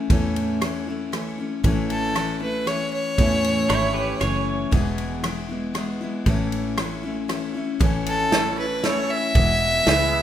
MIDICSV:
0, 0, Header, 1, 7, 480
1, 0, Start_track
1, 0, Key_signature, 3, "major"
1, 0, Tempo, 514139
1, 93, Time_signature, 3, 2, 24, 8
1, 9544, End_track
2, 0, Start_track
2, 0, Title_t, "Fiddle"
2, 0, Program_c, 0, 110
2, 1775, Note_on_c, 0, 69, 86
2, 2220, Note_off_c, 0, 69, 0
2, 2260, Note_on_c, 0, 71, 82
2, 2495, Note_on_c, 0, 73, 95
2, 2509, Note_off_c, 0, 71, 0
2, 2733, Note_off_c, 0, 73, 0
2, 2737, Note_on_c, 0, 73, 103
2, 4136, Note_off_c, 0, 73, 0
2, 7533, Note_on_c, 0, 69, 92
2, 7979, Note_off_c, 0, 69, 0
2, 8019, Note_on_c, 0, 71, 84
2, 8258, Note_on_c, 0, 73, 91
2, 8272, Note_off_c, 0, 71, 0
2, 8500, Note_on_c, 0, 76, 111
2, 8514, Note_off_c, 0, 73, 0
2, 9544, Note_off_c, 0, 76, 0
2, 9544, End_track
3, 0, Start_track
3, 0, Title_t, "Pedal steel guitar"
3, 0, Program_c, 1, 26
3, 3447, Note_on_c, 1, 64, 70
3, 3452, Note_on_c, 1, 73, 78
3, 3675, Note_on_c, 1, 67, 70
3, 3677, Note_off_c, 1, 73, 0
3, 3681, Note_on_c, 1, 71, 75
3, 3688, Note_off_c, 1, 64, 0
3, 3905, Note_off_c, 1, 67, 0
3, 3918, Note_off_c, 1, 71, 0
3, 3930, Note_on_c, 1, 73, 75
3, 4395, Note_off_c, 1, 73, 0
3, 9544, End_track
4, 0, Start_track
4, 0, Title_t, "Tonewheel organ"
4, 0, Program_c, 2, 16
4, 7769, Note_on_c, 2, 64, 64
4, 7773, Note_on_c, 2, 69, 60
4, 7774, Note_on_c, 2, 73, 79
4, 8087, Note_off_c, 2, 64, 0
4, 8089, Note_off_c, 2, 69, 0
4, 8089, Note_off_c, 2, 73, 0
4, 8250, Note_on_c, 2, 64, 66
4, 8251, Note_on_c, 2, 69, 67
4, 8254, Note_on_c, 2, 73, 74
4, 8567, Note_off_c, 2, 64, 0
4, 8568, Note_off_c, 2, 69, 0
4, 8569, Note_off_c, 2, 73, 0
4, 9214, Note_on_c, 2, 64, 78
4, 9217, Note_on_c, 2, 68, 74
4, 9217, Note_on_c, 2, 71, 91
4, 9530, Note_off_c, 2, 64, 0
4, 9532, Note_off_c, 2, 68, 0
4, 9532, Note_off_c, 2, 71, 0
4, 9544, End_track
5, 0, Start_track
5, 0, Title_t, "Steel-string acoustic guitar"
5, 0, Program_c, 3, 25
5, 0, Note_on_c, 3, 57, 51
5, 0, Note_on_c, 3, 61, 54
5, 0, Note_on_c, 3, 64, 55
5, 93, Note_on_c, 3, 45, 87
5, 94, Note_off_c, 3, 57, 0
5, 94, Note_off_c, 3, 64, 0
5, 101, Note_on_c, 3, 52, 77
5, 103, Note_off_c, 3, 61, 0
5, 105, Note_on_c, 3, 57, 84
5, 112, Note_on_c, 3, 61, 84
5, 118, Note_on_c, 3, 64, 78
5, 563, Note_off_c, 3, 52, 0
5, 566, Note_off_c, 3, 57, 0
5, 567, Note_on_c, 3, 52, 50
5, 572, Note_off_c, 3, 45, 0
5, 578, Note_on_c, 3, 57, 50
5, 580, Note_off_c, 3, 61, 0
5, 591, Note_on_c, 3, 61, 55
5, 592, Note_off_c, 3, 64, 0
5, 596, Note_on_c, 3, 64, 49
5, 797, Note_off_c, 3, 64, 0
5, 808, Note_on_c, 3, 64, 47
5, 809, Note_off_c, 3, 52, 0
5, 815, Note_off_c, 3, 57, 0
5, 816, Note_off_c, 3, 61, 0
5, 827, Note_on_c, 3, 61, 43
5, 841, Note_on_c, 3, 57, 43
5, 1048, Note_off_c, 3, 57, 0
5, 1048, Note_on_c, 3, 52, 63
5, 1050, Note_off_c, 3, 64, 0
5, 1059, Note_on_c, 3, 57, 57
5, 1060, Note_off_c, 3, 61, 0
5, 1072, Note_on_c, 3, 61, 59
5, 1080, Note_on_c, 3, 64, 56
5, 1276, Note_off_c, 3, 64, 0
5, 1287, Note_on_c, 3, 64, 51
5, 1290, Note_off_c, 3, 52, 0
5, 1294, Note_off_c, 3, 61, 0
5, 1296, Note_off_c, 3, 57, 0
5, 1305, Note_on_c, 3, 61, 51
5, 1316, Note_on_c, 3, 57, 44
5, 1526, Note_off_c, 3, 57, 0
5, 1527, Note_on_c, 3, 45, 79
5, 1529, Note_off_c, 3, 64, 0
5, 1530, Note_off_c, 3, 61, 0
5, 1534, Note_on_c, 3, 52, 85
5, 1537, Note_on_c, 3, 57, 82
5, 1541, Note_on_c, 3, 61, 90
5, 1547, Note_on_c, 3, 64, 86
5, 2005, Note_off_c, 3, 52, 0
5, 2009, Note_off_c, 3, 45, 0
5, 2009, Note_on_c, 3, 52, 50
5, 2014, Note_off_c, 3, 57, 0
5, 2016, Note_off_c, 3, 61, 0
5, 2023, Note_on_c, 3, 57, 44
5, 2033, Note_on_c, 3, 61, 51
5, 2036, Note_off_c, 3, 64, 0
5, 2039, Note_on_c, 3, 64, 56
5, 2233, Note_off_c, 3, 64, 0
5, 2244, Note_on_c, 3, 64, 46
5, 2250, Note_off_c, 3, 52, 0
5, 2251, Note_off_c, 3, 61, 0
5, 2257, Note_off_c, 3, 57, 0
5, 2262, Note_on_c, 3, 61, 37
5, 2276, Note_on_c, 3, 57, 39
5, 2484, Note_off_c, 3, 57, 0
5, 2484, Note_on_c, 3, 52, 51
5, 2487, Note_off_c, 3, 64, 0
5, 2495, Note_on_c, 3, 57, 60
5, 2496, Note_off_c, 3, 61, 0
5, 2508, Note_on_c, 3, 61, 56
5, 2517, Note_on_c, 3, 64, 62
5, 2972, Note_off_c, 3, 57, 0
5, 2972, Note_on_c, 3, 45, 74
5, 2974, Note_off_c, 3, 52, 0
5, 2978, Note_on_c, 3, 52, 79
5, 2979, Note_off_c, 3, 61, 0
5, 2984, Note_on_c, 3, 57, 76
5, 2989, Note_off_c, 3, 64, 0
5, 2989, Note_on_c, 3, 61, 85
5, 2993, Note_on_c, 3, 64, 88
5, 3448, Note_off_c, 3, 52, 0
5, 3451, Note_off_c, 3, 45, 0
5, 3452, Note_off_c, 3, 57, 0
5, 3452, Note_on_c, 3, 52, 52
5, 3460, Note_off_c, 3, 61, 0
5, 3463, Note_on_c, 3, 57, 56
5, 3477, Note_on_c, 3, 61, 60
5, 3481, Note_off_c, 3, 64, 0
5, 3485, Note_on_c, 3, 64, 64
5, 3916, Note_off_c, 3, 52, 0
5, 3920, Note_on_c, 3, 52, 63
5, 3925, Note_off_c, 3, 57, 0
5, 3929, Note_off_c, 3, 61, 0
5, 3936, Note_on_c, 3, 57, 54
5, 3940, Note_on_c, 3, 61, 69
5, 3949, Note_off_c, 3, 64, 0
5, 3953, Note_on_c, 3, 64, 66
5, 4400, Note_on_c, 3, 40, 93
5, 4406, Note_on_c, 3, 47, 81
5, 4410, Note_off_c, 3, 52, 0
5, 4412, Note_off_c, 3, 57, 0
5, 4414, Note_on_c, 3, 52, 90
5, 4415, Note_off_c, 3, 61, 0
5, 4416, Note_off_c, 3, 64, 0
5, 4416, Note_on_c, 3, 56, 90
5, 4420, Note_on_c, 3, 64, 101
5, 4422, Note_on_c, 3, 59, 94
5, 4880, Note_off_c, 3, 52, 0
5, 4884, Note_on_c, 3, 52, 54
5, 4885, Note_off_c, 3, 40, 0
5, 4886, Note_off_c, 3, 56, 0
5, 4888, Note_off_c, 3, 47, 0
5, 4896, Note_off_c, 3, 59, 0
5, 4898, Note_on_c, 3, 56, 58
5, 4909, Note_on_c, 3, 59, 66
5, 4912, Note_off_c, 3, 64, 0
5, 4916, Note_on_c, 3, 64, 56
5, 5113, Note_off_c, 3, 64, 0
5, 5124, Note_on_c, 3, 64, 49
5, 5127, Note_off_c, 3, 52, 0
5, 5128, Note_off_c, 3, 59, 0
5, 5134, Note_off_c, 3, 56, 0
5, 5139, Note_on_c, 3, 59, 45
5, 5150, Note_on_c, 3, 56, 43
5, 5160, Note_on_c, 3, 52, 41
5, 5347, Note_off_c, 3, 52, 0
5, 5358, Note_on_c, 3, 52, 57
5, 5365, Note_off_c, 3, 56, 0
5, 5367, Note_off_c, 3, 64, 0
5, 5372, Note_off_c, 3, 59, 0
5, 5377, Note_on_c, 3, 56, 62
5, 5384, Note_on_c, 3, 59, 62
5, 5390, Note_on_c, 3, 64, 59
5, 5597, Note_off_c, 3, 64, 0
5, 5604, Note_off_c, 3, 52, 0
5, 5608, Note_off_c, 3, 59, 0
5, 5608, Note_on_c, 3, 64, 62
5, 5613, Note_off_c, 3, 56, 0
5, 5619, Note_on_c, 3, 59, 55
5, 5633, Note_on_c, 3, 56, 54
5, 5639, Note_on_c, 3, 52, 40
5, 5841, Note_off_c, 3, 52, 0
5, 5844, Note_on_c, 3, 45, 77
5, 5849, Note_off_c, 3, 64, 0
5, 5852, Note_on_c, 3, 52, 80
5, 5855, Note_off_c, 3, 56, 0
5, 5855, Note_off_c, 3, 59, 0
5, 5859, Note_on_c, 3, 57, 85
5, 5863, Note_on_c, 3, 61, 88
5, 5868, Note_on_c, 3, 64, 92
5, 6312, Note_off_c, 3, 52, 0
5, 6323, Note_on_c, 3, 52, 49
5, 6324, Note_off_c, 3, 57, 0
5, 6328, Note_off_c, 3, 45, 0
5, 6332, Note_off_c, 3, 61, 0
5, 6335, Note_on_c, 3, 57, 52
5, 6339, Note_off_c, 3, 64, 0
5, 6343, Note_on_c, 3, 61, 56
5, 6354, Note_on_c, 3, 64, 58
5, 6552, Note_off_c, 3, 64, 0
5, 6564, Note_on_c, 3, 64, 51
5, 6567, Note_off_c, 3, 52, 0
5, 6572, Note_off_c, 3, 61, 0
5, 6573, Note_off_c, 3, 57, 0
5, 6583, Note_on_c, 3, 61, 45
5, 6599, Note_on_c, 3, 57, 43
5, 6799, Note_on_c, 3, 52, 57
5, 6800, Note_off_c, 3, 57, 0
5, 6807, Note_off_c, 3, 64, 0
5, 6812, Note_off_c, 3, 61, 0
5, 6812, Note_on_c, 3, 57, 57
5, 6823, Note_on_c, 3, 61, 61
5, 6832, Note_on_c, 3, 64, 63
5, 7030, Note_off_c, 3, 64, 0
5, 7041, Note_on_c, 3, 64, 59
5, 7045, Note_off_c, 3, 52, 0
5, 7051, Note_off_c, 3, 57, 0
5, 7053, Note_off_c, 3, 61, 0
5, 7064, Note_on_c, 3, 61, 51
5, 7079, Note_on_c, 3, 57, 47
5, 7276, Note_off_c, 3, 57, 0
5, 7277, Note_on_c, 3, 45, 72
5, 7284, Note_on_c, 3, 52, 86
5, 7286, Note_off_c, 3, 61, 0
5, 7286, Note_off_c, 3, 64, 0
5, 7287, Note_on_c, 3, 57, 82
5, 7297, Note_on_c, 3, 61, 92
5, 7299, Note_on_c, 3, 64, 87
5, 7750, Note_off_c, 3, 52, 0
5, 7754, Note_on_c, 3, 52, 48
5, 7757, Note_off_c, 3, 57, 0
5, 7765, Note_off_c, 3, 45, 0
5, 7767, Note_off_c, 3, 61, 0
5, 7768, Note_on_c, 3, 57, 55
5, 7778, Note_on_c, 3, 61, 48
5, 7783, Note_off_c, 3, 64, 0
5, 7787, Note_on_c, 3, 64, 57
5, 8247, Note_off_c, 3, 52, 0
5, 8250, Note_on_c, 3, 52, 53
5, 8251, Note_off_c, 3, 57, 0
5, 8256, Note_off_c, 3, 61, 0
5, 8260, Note_on_c, 3, 57, 59
5, 8271, Note_on_c, 3, 61, 60
5, 8278, Note_off_c, 3, 64, 0
5, 8281, Note_on_c, 3, 64, 63
5, 8727, Note_on_c, 3, 40, 72
5, 8732, Note_on_c, 3, 47, 70
5, 8735, Note_off_c, 3, 52, 0
5, 8736, Note_off_c, 3, 57, 0
5, 8739, Note_on_c, 3, 52, 67
5, 8740, Note_off_c, 3, 61, 0
5, 8740, Note_on_c, 3, 56, 67
5, 8744, Note_on_c, 3, 59, 77
5, 8747, Note_off_c, 3, 64, 0
5, 8750, Note_on_c, 3, 64, 76
5, 9205, Note_off_c, 3, 52, 0
5, 9209, Note_on_c, 3, 52, 49
5, 9211, Note_off_c, 3, 40, 0
5, 9211, Note_off_c, 3, 56, 0
5, 9214, Note_off_c, 3, 47, 0
5, 9219, Note_off_c, 3, 59, 0
5, 9223, Note_on_c, 3, 56, 53
5, 9233, Note_on_c, 3, 59, 60
5, 9237, Note_off_c, 3, 64, 0
5, 9240, Note_on_c, 3, 64, 71
5, 9544, Note_off_c, 3, 52, 0
5, 9544, Note_off_c, 3, 56, 0
5, 9544, Note_off_c, 3, 59, 0
5, 9544, Note_off_c, 3, 64, 0
5, 9544, End_track
6, 0, Start_track
6, 0, Title_t, "Fingered electric bass"
6, 0, Program_c, 4, 33
6, 92, Note_on_c, 4, 40, 73
6, 1345, Note_off_c, 4, 40, 0
6, 1531, Note_on_c, 4, 33, 76
6, 2784, Note_off_c, 4, 33, 0
6, 2974, Note_on_c, 4, 40, 66
6, 3390, Note_off_c, 4, 40, 0
6, 3450, Note_on_c, 4, 32, 71
6, 3858, Note_off_c, 4, 32, 0
6, 3932, Note_on_c, 4, 30, 78
6, 4339, Note_off_c, 4, 30, 0
6, 4410, Note_on_c, 4, 28, 78
6, 5664, Note_off_c, 4, 28, 0
6, 5846, Note_on_c, 4, 33, 81
6, 7103, Note_off_c, 4, 33, 0
6, 7289, Note_on_c, 4, 33, 78
6, 8546, Note_off_c, 4, 33, 0
6, 8731, Note_on_c, 4, 28, 76
6, 9151, Note_off_c, 4, 28, 0
6, 9211, Note_on_c, 4, 37, 74
6, 9544, Note_off_c, 4, 37, 0
6, 9544, End_track
7, 0, Start_track
7, 0, Title_t, "Drums"
7, 93, Note_on_c, 9, 51, 61
7, 94, Note_on_c, 9, 36, 106
7, 187, Note_off_c, 9, 36, 0
7, 187, Note_off_c, 9, 51, 0
7, 337, Note_on_c, 9, 51, 52
7, 431, Note_off_c, 9, 51, 0
7, 575, Note_on_c, 9, 37, 79
7, 575, Note_on_c, 9, 51, 55
7, 668, Note_off_c, 9, 37, 0
7, 668, Note_off_c, 9, 51, 0
7, 1056, Note_on_c, 9, 37, 68
7, 1056, Note_on_c, 9, 51, 48
7, 1149, Note_off_c, 9, 37, 0
7, 1149, Note_off_c, 9, 51, 0
7, 1532, Note_on_c, 9, 36, 99
7, 1533, Note_on_c, 9, 51, 60
7, 1626, Note_off_c, 9, 36, 0
7, 1626, Note_off_c, 9, 51, 0
7, 1773, Note_on_c, 9, 51, 46
7, 1866, Note_off_c, 9, 51, 0
7, 2013, Note_on_c, 9, 37, 75
7, 2013, Note_on_c, 9, 51, 56
7, 2106, Note_off_c, 9, 37, 0
7, 2106, Note_off_c, 9, 51, 0
7, 2493, Note_on_c, 9, 37, 66
7, 2493, Note_on_c, 9, 51, 53
7, 2586, Note_off_c, 9, 37, 0
7, 2586, Note_off_c, 9, 51, 0
7, 2971, Note_on_c, 9, 51, 59
7, 2972, Note_on_c, 9, 36, 105
7, 3065, Note_off_c, 9, 36, 0
7, 3065, Note_off_c, 9, 51, 0
7, 3215, Note_on_c, 9, 51, 55
7, 3308, Note_off_c, 9, 51, 0
7, 3451, Note_on_c, 9, 37, 82
7, 3451, Note_on_c, 9, 51, 58
7, 3544, Note_off_c, 9, 37, 0
7, 3544, Note_off_c, 9, 51, 0
7, 3928, Note_on_c, 9, 37, 67
7, 3928, Note_on_c, 9, 51, 50
7, 4022, Note_off_c, 9, 37, 0
7, 4022, Note_off_c, 9, 51, 0
7, 4409, Note_on_c, 9, 51, 55
7, 4410, Note_on_c, 9, 36, 105
7, 4503, Note_off_c, 9, 36, 0
7, 4503, Note_off_c, 9, 51, 0
7, 4648, Note_on_c, 9, 51, 49
7, 4742, Note_off_c, 9, 51, 0
7, 4889, Note_on_c, 9, 37, 77
7, 4889, Note_on_c, 9, 51, 59
7, 4983, Note_off_c, 9, 37, 0
7, 4983, Note_off_c, 9, 51, 0
7, 5366, Note_on_c, 9, 37, 66
7, 5366, Note_on_c, 9, 51, 49
7, 5460, Note_off_c, 9, 37, 0
7, 5460, Note_off_c, 9, 51, 0
7, 5844, Note_on_c, 9, 51, 55
7, 5847, Note_on_c, 9, 36, 93
7, 5937, Note_off_c, 9, 51, 0
7, 5940, Note_off_c, 9, 36, 0
7, 6088, Note_on_c, 9, 51, 47
7, 6181, Note_off_c, 9, 51, 0
7, 6326, Note_on_c, 9, 37, 82
7, 6326, Note_on_c, 9, 51, 55
7, 6420, Note_off_c, 9, 37, 0
7, 6420, Note_off_c, 9, 51, 0
7, 6809, Note_on_c, 9, 37, 72
7, 6809, Note_on_c, 9, 51, 53
7, 6902, Note_off_c, 9, 37, 0
7, 6902, Note_off_c, 9, 51, 0
7, 7287, Note_on_c, 9, 36, 113
7, 7287, Note_on_c, 9, 51, 68
7, 7380, Note_off_c, 9, 36, 0
7, 7380, Note_off_c, 9, 51, 0
7, 7528, Note_on_c, 9, 51, 60
7, 7621, Note_off_c, 9, 51, 0
7, 7769, Note_on_c, 9, 38, 84
7, 7769, Note_on_c, 9, 51, 59
7, 7863, Note_off_c, 9, 38, 0
7, 7863, Note_off_c, 9, 51, 0
7, 8249, Note_on_c, 9, 38, 67
7, 8249, Note_on_c, 9, 51, 50
7, 8342, Note_off_c, 9, 38, 0
7, 8342, Note_off_c, 9, 51, 0
7, 8729, Note_on_c, 9, 51, 57
7, 8731, Note_on_c, 9, 36, 110
7, 8823, Note_off_c, 9, 51, 0
7, 8824, Note_off_c, 9, 36, 0
7, 9212, Note_on_c, 9, 38, 88
7, 9212, Note_on_c, 9, 51, 59
7, 9305, Note_off_c, 9, 38, 0
7, 9305, Note_off_c, 9, 51, 0
7, 9544, End_track
0, 0, End_of_file